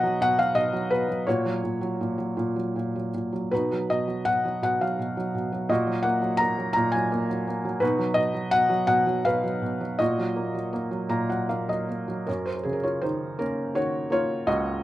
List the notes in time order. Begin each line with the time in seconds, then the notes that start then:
Already playing: B2 F#3 D#4 F#4 B4 D#5 F#5
0.03 F#3
0.21 B2 F#5
0.38 F#3 F5
0.55 B2 D#5
0.73 F#3
0.91 B2 B4
1.09 F#3
1.27 A#2 F#4 C#5
1.45 F#3
1.63 A#2
1.81 F#3
2.01 A#2
2.18 F#3
2.37 A#2
2.56 F#3
2.76 A#2
2.96 F#3
3.14 A#2
3.33 F#3
3.51 B2 D#4 F#4 B4
3.72 F#3
3.90 B2 D#5
4.08 F#3
4.25 B2 F#5
4.45 F#3
4.62 B2 F#5
4.81 F#3 F5
4.99 B2
5.17 F#3
5.35 B2
5.52 F#3
5.69 A#2 F#4 D#5
5.87 F#3
6.03 A#3 F#5
6.22 F#3
6.37 A#3 A#5
6.58 F#3
6.73 A#2 A#5
6.92 F#3 G#5
7.12 A#3
7.30 F#3
7.47 A#3
7.65 F#3
7.80 B2 D#4 F#4 B4
7.98 F#3
8.14 B2 D#5
8.34 F#3
8.51 B2 F#5
8.69 F#3
8.87 B2 F#5
9.07 F#3
9.25 B2 B4 F5
9.43 F#3
9.62 B2
9.81 F#3
9.99 A#2 F#4 D#5
10.19 F#3
10.36 A#3
10.55 F#3
10.73 A#3
10.91 F#3
11.09 A#2 A#5
11.30 F#3 F#5
11.49 A#3 F5
11.69 F#3 D#5
11.89 A#3
12.08 F#3
12.27 F#2 C#4 A#4
12.46 C5
12.55 A#4
12.63 C#3 G#4
12.73 A#4
12.83 F4 C#5
13.02 D#3 D#4 C5
13.39 A#3 C#4 A#4
13.75 D#3 F#4 C#5
14.10 A#3 F4 C#5
14.47 C#2 F#4 D#5